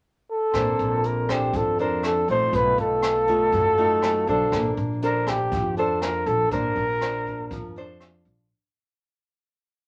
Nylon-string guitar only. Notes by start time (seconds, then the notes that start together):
0.55 A#3 D4 A4 C5
1.29 D4 A4 C5
1.55 F3
1.80 D4 A4 C5
2.30 A3 D#4 F4
2.54 B2
3.28 A3 D#4 F4
3.53 F#3
3.78 A3 D#4 F4
4.28 D4 A4 C5
4.54 A#3
5.03 D4 A4 C5
5.52 F3
5.78 D4 A4 C5
6.52 A#3 D4 C5
7.02 D4 C5
7.52 F3
7.77 D4 A4 C5